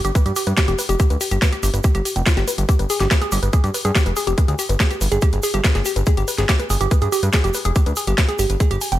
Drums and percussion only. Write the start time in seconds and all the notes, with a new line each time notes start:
0.05 closed hi-hat, shaker
0.15 kick, closed hi-hat, shaker
0.26 closed hi-hat, shaker
0.36 open hi-hat, shaker
0.47 closed hi-hat, shaker
0.57 kick, snare, closed hi-hat, shaker
0.68 closed hi-hat, shaker
0.79 open hi-hat, shaker
0.89 closed hi-hat, shaker
1.00 kick, closed hi-hat, shaker
1.10 closed hi-hat, shaker
1.21 open hi-hat, shaker
1.31 closed hi-hat, shaker
1.42 kick, snare, closed hi-hat, shaker
1.53 closed hi-hat, shaker
1.63 open hi-hat, shaker
1.74 closed hi-hat, shaker
1.84 kick, closed hi-hat, shaker
1.95 closed hi-hat, shaker
2.05 open hi-hat, shaker
2.16 closed hi-hat, shaker
2.26 kick, snare, closed hi-hat, shaker
2.37 snare, closed hi-hat, shaker
2.48 open hi-hat, shaker
2.58 closed hi-hat, shaker
2.69 kick, closed hi-hat, shaker
2.79 closed hi-hat, shaker
2.90 open hi-hat, shaker
3.00 snare, closed hi-hat, shaker
3.11 kick, snare, closed hi-hat, shaker
3.21 closed hi-hat, shaker
3.32 open hi-hat, shaker
3.43 closed hi-hat, shaker
3.53 kick, closed hi-hat, shaker
3.64 closed hi-hat, shaker
3.74 open hi-hat, shaker
3.85 closed hi-hat, shaker
3.95 kick, snare, closed hi-hat, shaker
4.06 closed hi-hat, shaker
4.16 open hi-hat, shaker
4.27 closed hi-hat, shaker
4.38 kick, closed hi-hat, shaker
4.48 closed hi-hat, shaker
4.59 open hi-hat, shaker
4.69 closed hi-hat, shaker
4.80 kick, snare, closed hi-hat, shaker
4.90 closed hi-hat, shaker
5.01 open hi-hat, shaker
5.11 closed hi-hat, shaker
5.22 kick, closed hi-hat, shaker
5.32 closed hi-hat, shaker
5.43 open hi-hat, shaker
5.54 closed hi-hat, shaker
5.64 kick, snare, closed hi-hat, shaker
5.75 snare, closed hi-hat, shaker
5.85 open hi-hat, shaker
5.96 closed hi-hat, shaker
6.06 kick, closed hi-hat, shaker
6.17 closed hi-hat, shaker
6.28 open hi-hat, shaker
6.38 snare, closed hi-hat, shaker
6.49 kick, snare, closed hi-hat, shaker
6.59 closed hi-hat, shaker
6.70 open hi-hat, shaker
6.81 closed hi-hat, shaker
6.91 kick, closed hi-hat, shaker
7.02 closed hi-hat, shaker
7.12 open hi-hat, shaker
7.23 closed hi-hat, shaker
7.33 kick, snare, closed hi-hat, shaker
7.44 closed hi-hat, shaker
7.54 open hi-hat, shaker
7.64 closed hi-hat, shaker
7.75 kick, closed hi-hat, shaker
7.86 closed hi-hat, shaker
7.96 open hi-hat, shaker
8.07 closed hi-hat, shaker
8.18 kick, snare, closed hi-hat, shaker
8.29 closed hi-hat, shaker
8.39 open hi-hat, shaker
8.49 closed hi-hat, shaker
8.60 kick, closed hi-hat, shaker
8.71 closed hi-hat, shaker
8.81 open hi-hat, shaker
8.92 closed hi-hat, shaker